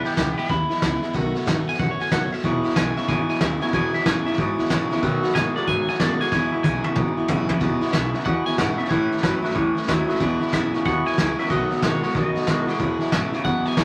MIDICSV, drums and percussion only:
0, 0, Header, 1, 2, 480
1, 0, Start_track
1, 0, Key_signature, 4, "major"
1, 0, Tempo, 323799
1, 1696, Time_signature, 4, 2, 24, 8
1, 20518, End_track
2, 0, Start_track
2, 0, Title_t, "Drums"
2, 67, Note_on_c, 9, 38, 39
2, 163, Note_off_c, 9, 38, 0
2, 163, Note_on_c, 9, 38, 36
2, 250, Note_on_c, 9, 36, 86
2, 251, Note_off_c, 9, 38, 0
2, 251, Note_on_c, 9, 38, 109
2, 251, Note_on_c, 9, 44, 89
2, 399, Note_off_c, 9, 36, 0
2, 400, Note_off_c, 9, 38, 0
2, 400, Note_off_c, 9, 44, 0
2, 554, Note_on_c, 9, 38, 34
2, 648, Note_off_c, 9, 38, 0
2, 648, Note_on_c, 9, 38, 33
2, 732, Note_on_c, 9, 36, 105
2, 733, Note_off_c, 9, 38, 0
2, 733, Note_on_c, 9, 38, 36
2, 881, Note_off_c, 9, 36, 0
2, 881, Note_off_c, 9, 38, 0
2, 1039, Note_on_c, 9, 38, 37
2, 1128, Note_off_c, 9, 38, 0
2, 1128, Note_on_c, 9, 38, 37
2, 1215, Note_off_c, 9, 38, 0
2, 1215, Note_on_c, 9, 36, 81
2, 1215, Note_on_c, 9, 38, 110
2, 1215, Note_on_c, 9, 44, 86
2, 1363, Note_off_c, 9, 36, 0
2, 1363, Note_off_c, 9, 38, 0
2, 1363, Note_off_c, 9, 44, 0
2, 1520, Note_on_c, 9, 38, 35
2, 1668, Note_off_c, 9, 38, 0
2, 1692, Note_on_c, 9, 38, 37
2, 1695, Note_on_c, 9, 36, 102
2, 1840, Note_off_c, 9, 38, 0
2, 1844, Note_off_c, 9, 36, 0
2, 2004, Note_on_c, 9, 38, 36
2, 2099, Note_off_c, 9, 38, 0
2, 2099, Note_on_c, 9, 38, 37
2, 2179, Note_on_c, 9, 36, 87
2, 2184, Note_off_c, 9, 38, 0
2, 2184, Note_on_c, 9, 38, 114
2, 2184, Note_on_c, 9, 44, 86
2, 2328, Note_off_c, 9, 36, 0
2, 2332, Note_off_c, 9, 38, 0
2, 2332, Note_off_c, 9, 44, 0
2, 2492, Note_on_c, 9, 38, 34
2, 2580, Note_off_c, 9, 38, 0
2, 2580, Note_on_c, 9, 38, 32
2, 2659, Note_off_c, 9, 38, 0
2, 2659, Note_on_c, 9, 36, 118
2, 2659, Note_on_c, 9, 38, 37
2, 2807, Note_off_c, 9, 38, 0
2, 2808, Note_off_c, 9, 36, 0
2, 2967, Note_on_c, 9, 38, 36
2, 3053, Note_off_c, 9, 38, 0
2, 3053, Note_on_c, 9, 38, 38
2, 3135, Note_off_c, 9, 38, 0
2, 3135, Note_on_c, 9, 38, 109
2, 3135, Note_on_c, 9, 44, 91
2, 3137, Note_on_c, 9, 36, 85
2, 3283, Note_off_c, 9, 38, 0
2, 3283, Note_off_c, 9, 44, 0
2, 3285, Note_off_c, 9, 36, 0
2, 3447, Note_on_c, 9, 38, 36
2, 3532, Note_off_c, 9, 38, 0
2, 3532, Note_on_c, 9, 38, 32
2, 3615, Note_off_c, 9, 38, 0
2, 3615, Note_on_c, 9, 36, 102
2, 3615, Note_on_c, 9, 38, 35
2, 3763, Note_off_c, 9, 38, 0
2, 3764, Note_off_c, 9, 36, 0
2, 3920, Note_on_c, 9, 38, 36
2, 4006, Note_off_c, 9, 38, 0
2, 4006, Note_on_c, 9, 38, 38
2, 4092, Note_off_c, 9, 38, 0
2, 4092, Note_on_c, 9, 38, 107
2, 4092, Note_on_c, 9, 44, 92
2, 4093, Note_on_c, 9, 36, 82
2, 4240, Note_off_c, 9, 38, 0
2, 4240, Note_off_c, 9, 44, 0
2, 4241, Note_off_c, 9, 36, 0
2, 4400, Note_on_c, 9, 38, 36
2, 4487, Note_off_c, 9, 38, 0
2, 4487, Note_on_c, 9, 38, 36
2, 4570, Note_off_c, 9, 38, 0
2, 4570, Note_on_c, 9, 38, 37
2, 4572, Note_on_c, 9, 36, 116
2, 4718, Note_off_c, 9, 38, 0
2, 4721, Note_off_c, 9, 36, 0
2, 4877, Note_on_c, 9, 38, 39
2, 4968, Note_off_c, 9, 38, 0
2, 4968, Note_on_c, 9, 38, 36
2, 5049, Note_off_c, 9, 38, 0
2, 5049, Note_on_c, 9, 38, 114
2, 5049, Note_on_c, 9, 44, 94
2, 5052, Note_on_c, 9, 36, 84
2, 5197, Note_off_c, 9, 38, 0
2, 5197, Note_off_c, 9, 44, 0
2, 5200, Note_off_c, 9, 36, 0
2, 5358, Note_on_c, 9, 38, 37
2, 5439, Note_off_c, 9, 38, 0
2, 5439, Note_on_c, 9, 38, 31
2, 5528, Note_off_c, 9, 38, 0
2, 5528, Note_on_c, 9, 38, 34
2, 5532, Note_on_c, 9, 36, 117
2, 5677, Note_off_c, 9, 38, 0
2, 5681, Note_off_c, 9, 36, 0
2, 5838, Note_on_c, 9, 38, 37
2, 5923, Note_off_c, 9, 38, 0
2, 5923, Note_on_c, 9, 38, 37
2, 6014, Note_off_c, 9, 38, 0
2, 6014, Note_on_c, 9, 38, 111
2, 6014, Note_on_c, 9, 44, 92
2, 6015, Note_on_c, 9, 36, 89
2, 6162, Note_off_c, 9, 38, 0
2, 6162, Note_off_c, 9, 44, 0
2, 6163, Note_off_c, 9, 36, 0
2, 6319, Note_on_c, 9, 38, 37
2, 6413, Note_off_c, 9, 38, 0
2, 6413, Note_on_c, 9, 38, 37
2, 6492, Note_off_c, 9, 38, 0
2, 6492, Note_on_c, 9, 38, 37
2, 6494, Note_on_c, 9, 36, 112
2, 6641, Note_off_c, 9, 38, 0
2, 6642, Note_off_c, 9, 36, 0
2, 6800, Note_on_c, 9, 38, 37
2, 6888, Note_off_c, 9, 38, 0
2, 6888, Note_on_c, 9, 38, 36
2, 6970, Note_off_c, 9, 38, 0
2, 6970, Note_on_c, 9, 38, 109
2, 6970, Note_on_c, 9, 44, 87
2, 6972, Note_on_c, 9, 36, 84
2, 7118, Note_off_c, 9, 38, 0
2, 7118, Note_off_c, 9, 44, 0
2, 7120, Note_off_c, 9, 36, 0
2, 7283, Note_on_c, 9, 38, 37
2, 7366, Note_off_c, 9, 38, 0
2, 7366, Note_on_c, 9, 38, 33
2, 7450, Note_off_c, 9, 38, 0
2, 7450, Note_on_c, 9, 38, 35
2, 7454, Note_on_c, 9, 36, 111
2, 7598, Note_off_c, 9, 38, 0
2, 7603, Note_off_c, 9, 36, 0
2, 7759, Note_on_c, 9, 38, 35
2, 7848, Note_off_c, 9, 38, 0
2, 7848, Note_on_c, 9, 38, 37
2, 7934, Note_on_c, 9, 36, 91
2, 7937, Note_off_c, 9, 38, 0
2, 7937, Note_on_c, 9, 38, 116
2, 7937, Note_on_c, 9, 44, 86
2, 8082, Note_off_c, 9, 36, 0
2, 8086, Note_off_c, 9, 38, 0
2, 8086, Note_off_c, 9, 44, 0
2, 8243, Note_on_c, 9, 38, 38
2, 8391, Note_off_c, 9, 38, 0
2, 8406, Note_on_c, 9, 38, 37
2, 8412, Note_on_c, 9, 36, 111
2, 8554, Note_off_c, 9, 38, 0
2, 8560, Note_off_c, 9, 36, 0
2, 8724, Note_on_c, 9, 38, 36
2, 8806, Note_off_c, 9, 38, 0
2, 8806, Note_on_c, 9, 38, 34
2, 8888, Note_off_c, 9, 38, 0
2, 8888, Note_on_c, 9, 38, 113
2, 8888, Note_on_c, 9, 44, 81
2, 8890, Note_on_c, 9, 36, 89
2, 9036, Note_off_c, 9, 38, 0
2, 9036, Note_off_c, 9, 44, 0
2, 9039, Note_off_c, 9, 36, 0
2, 9203, Note_on_c, 9, 38, 36
2, 9286, Note_off_c, 9, 38, 0
2, 9286, Note_on_c, 9, 38, 35
2, 9365, Note_off_c, 9, 38, 0
2, 9365, Note_on_c, 9, 38, 62
2, 9368, Note_on_c, 9, 36, 115
2, 9513, Note_off_c, 9, 38, 0
2, 9516, Note_off_c, 9, 36, 0
2, 9842, Note_on_c, 9, 44, 90
2, 9842, Note_on_c, 9, 48, 75
2, 9845, Note_on_c, 9, 36, 92
2, 9990, Note_off_c, 9, 44, 0
2, 9990, Note_off_c, 9, 48, 0
2, 9993, Note_off_c, 9, 36, 0
2, 10143, Note_on_c, 9, 48, 75
2, 10291, Note_off_c, 9, 48, 0
2, 10311, Note_on_c, 9, 47, 92
2, 10322, Note_on_c, 9, 36, 116
2, 10460, Note_off_c, 9, 47, 0
2, 10471, Note_off_c, 9, 36, 0
2, 10794, Note_on_c, 9, 43, 102
2, 10794, Note_on_c, 9, 44, 91
2, 10801, Note_on_c, 9, 36, 93
2, 10942, Note_off_c, 9, 43, 0
2, 10942, Note_off_c, 9, 44, 0
2, 10949, Note_off_c, 9, 36, 0
2, 11103, Note_on_c, 9, 43, 97
2, 11251, Note_off_c, 9, 43, 0
2, 11269, Note_on_c, 9, 38, 34
2, 11280, Note_on_c, 9, 36, 111
2, 11417, Note_off_c, 9, 38, 0
2, 11428, Note_off_c, 9, 36, 0
2, 11581, Note_on_c, 9, 38, 36
2, 11673, Note_off_c, 9, 38, 0
2, 11673, Note_on_c, 9, 38, 38
2, 11752, Note_off_c, 9, 38, 0
2, 11752, Note_on_c, 9, 38, 112
2, 11752, Note_on_c, 9, 44, 86
2, 11759, Note_on_c, 9, 36, 90
2, 11901, Note_off_c, 9, 38, 0
2, 11901, Note_off_c, 9, 44, 0
2, 11908, Note_off_c, 9, 36, 0
2, 12067, Note_on_c, 9, 38, 37
2, 12154, Note_off_c, 9, 38, 0
2, 12154, Note_on_c, 9, 38, 36
2, 12233, Note_off_c, 9, 38, 0
2, 12233, Note_on_c, 9, 38, 34
2, 12239, Note_on_c, 9, 36, 121
2, 12382, Note_off_c, 9, 38, 0
2, 12387, Note_off_c, 9, 36, 0
2, 12547, Note_on_c, 9, 38, 36
2, 12639, Note_off_c, 9, 38, 0
2, 12639, Note_on_c, 9, 38, 37
2, 12721, Note_off_c, 9, 38, 0
2, 12721, Note_on_c, 9, 36, 89
2, 12721, Note_on_c, 9, 38, 117
2, 12721, Note_on_c, 9, 44, 85
2, 12869, Note_off_c, 9, 36, 0
2, 12869, Note_off_c, 9, 38, 0
2, 12869, Note_off_c, 9, 44, 0
2, 13029, Note_on_c, 9, 38, 35
2, 13116, Note_off_c, 9, 38, 0
2, 13116, Note_on_c, 9, 38, 33
2, 13202, Note_off_c, 9, 38, 0
2, 13202, Note_on_c, 9, 36, 117
2, 13202, Note_on_c, 9, 38, 33
2, 13350, Note_off_c, 9, 36, 0
2, 13351, Note_off_c, 9, 38, 0
2, 13512, Note_on_c, 9, 38, 38
2, 13597, Note_off_c, 9, 38, 0
2, 13597, Note_on_c, 9, 38, 36
2, 13684, Note_off_c, 9, 38, 0
2, 13684, Note_on_c, 9, 36, 91
2, 13684, Note_on_c, 9, 38, 112
2, 13684, Note_on_c, 9, 44, 85
2, 13832, Note_off_c, 9, 36, 0
2, 13832, Note_off_c, 9, 38, 0
2, 13832, Note_off_c, 9, 44, 0
2, 14000, Note_on_c, 9, 38, 37
2, 14076, Note_off_c, 9, 38, 0
2, 14076, Note_on_c, 9, 38, 32
2, 14159, Note_off_c, 9, 38, 0
2, 14159, Note_on_c, 9, 38, 34
2, 14164, Note_on_c, 9, 36, 113
2, 14307, Note_off_c, 9, 38, 0
2, 14312, Note_off_c, 9, 36, 0
2, 14478, Note_on_c, 9, 38, 35
2, 14565, Note_off_c, 9, 38, 0
2, 14565, Note_on_c, 9, 38, 37
2, 14648, Note_on_c, 9, 36, 86
2, 14650, Note_off_c, 9, 38, 0
2, 14650, Note_on_c, 9, 38, 114
2, 14650, Note_on_c, 9, 44, 88
2, 14796, Note_off_c, 9, 36, 0
2, 14798, Note_off_c, 9, 38, 0
2, 14798, Note_off_c, 9, 44, 0
2, 14962, Note_on_c, 9, 38, 37
2, 15042, Note_off_c, 9, 38, 0
2, 15042, Note_on_c, 9, 38, 33
2, 15124, Note_off_c, 9, 38, 0
2, 15124, Note_on_c, 9, 38, 34
2, 15127, Note_on_c, 9, 36, 110
2, 15272, Note_off_c, 9, 38, 0
2, 15276, Note_off_c, 9, 36, 0
2, 15443, Note_on_c, 9, 38, 36
2, 15529, Note_off_c, 9, 38, 0
2, 15529, Note_on_c, 9, 38, 38
2, 15606, Note_on_c, 9, 36, 90
2, 15607, Note_off_c, 9, 38, 0
2, 15607, Note_on_c, 9, 38, 113
2, 15607, Note_on_c, 9, 44, 86
2, 15755, Note_off_c, 9, 36, 0
2, 15756, Note_off_c, 9, 38, 0
2, 15756, Note_off_c, 9, 44, 0
2, 15923, Note_on_c, 9, 38, 36
2, 16071, Note_off_c, 9, 38, 0
2, 16091, Note_on_c, 9, 36, 117
2, 16098, Note_on_c, 9, 38, 35
2, 16239, Note_off_c, 9, 36, 0
2, 16246, Note_off_c, 9, 38, 0
2, 16403, Note_on_c, 9, 38, 35
2, 16487, Note_off_c, 9, 38, 0
2, 16487, Note_on_c, 9, 38, 37
2, 16570, Note_on_c, 9, 36, 81
2, 16571, Note_off_c, 9, 38, 0
2, 16571, Note_on_c, 9, 38, 118
2, 16571, Note_on_c, 9, 44, 92
2, 16718, Note_off_c, 9, 36, 0
2, 16719, Note_off_c, 9, 38, 0
2, 16719, Note_off_c, 9, 44, 0
2, 16879, Note_on_c, 9, 38, 37
2, 16967, Note_off_c, 9, 38, 0
2, 16967, Note_on_c, 9, 38, 30
2, 17045, Note_off_c, 9, 38, 0
2, 17045, Note_on_c, 9, 38, 35
2, 17048, Note_on_c, 9, 36, 107
2, 17193, Note_off_c, 9, 38, 0
2, 17196, Note_off_c, 9, 36, 0
2, 17355, Note_on_c, 9, 38, 35
2, 17440, Note_off_c, 9, 38, 0
2, 17440, Note_on_c, 9, 38, 37
2, 17527, Note_off_c, 9, 38, 0
2, 17527, Note_on_c, 9, 38, 108
2, 17527, Note_on_c, 9, 44, 85
2, 17528, Note_on_c, 9, 36, 81
2, 17675, Note_off_c, 9, 38, 0
2, 17675, Note_off_c, 9, 44, 0
2, 17676, Note_off_c, 9, 36, 0
2, 17838, Note_on_c, 9, 38, 35
2, 17926, Note_off_c, 9, 38, 0
2, 17926, Note_on_c, 9, 38, 32
2, 18005, Note_off_c, 9, 38, 0
2, 18005, Note_on_c, 9, 38, 36
2, 18010, Note_on_c, 9, 36, 118
2, 18153, Note_off_c, 9, 38, 0
2, 18158, Note_off_c, 9, 36, 0
2, 18316, Note_on_c, 9, 38, 38
2, 18403, Note_off_c, 9, 38, 0
2, 18403, Note_on_c, 9, 38, 34
2, 18484, Note_off_c, 9, 38, 0
2, 18484, Note_on_c, 9, 38, 114
2, 18484, Note_on_c, 9, 44, 80
2, 18490, Note_on_c, 9, 36, 90
2, 18632, Note_off_c, 9, 38, 0
2, 18632, Note_off_c, 9, 44, 0
2, 18638, Note_off_c, 9, 36, 0
2, 18799, Note_on_c, 9, 38, 36
2, 18880, Note_off_c, 9, 38, 0
2, 18880, Note_on_c, 9, 38, 33
2, 18970, Note_off_c, 9, 38, 0
2, 18970, Note_on_c, 9, 36, 106
2, 18970, Note_on_c, 9, 38, 36
2, 19118, Note_off_c, 9, 38, 0
2, 19119, Note_off_c, 9, 36, 0
2, 19277, Note_on_c, 9, 38, 38
2, 19367, Note_off_c, 9, 38, 0
2, 19367, Note_on_c, 9, 38, 36
2, 19450, Note_off_c, 9, 38, 0
2, 19450, Note_on_c, 9, 38, 117
2, 19450, Note_on_c, 9, 44, 85
2, 19452, Note_on_c, 9, 36, 93
2, 19598, Note_off_c, 9, 38, 0
2, 19598, Note_off_c, 9, 44, 0
2, 19600, Note_off_c, 9, 36, 0
2, 19764, Note_on_c, 9, 38, 38
2, 19912, Note_off_c, 9, 38, 0
2, 19933, Note_on_c, 9, 36, 113
2, 19933, Note_on_c, 9, 38, 35
2, 20081, Note_off_c, 9, 36, 0
2, 20081, Note_off_c, 9, 38, 0
2, 20239, Note_on_c, 9, 38, 36
2, 20327, Note_off_c, 9, 38, 0
2, 20327, Note_on_c, 9, 38, 37
2, 20413, Note_off_c, 9, 38, 0
2, 20413, Note_on_c, 9, 36, 87
2, 20413, Note_on_c, 9, 38, 109
2, 20413, Note_on_c, 9, 44, 89
2, 20518, Note_off_c, 9, 36, 0
2, 20518, Note_off_c, 9, 38, 0
2, 20518, Note_off_c, 9, 44, 0
2, 20518, End_track
0, 0, End_of_file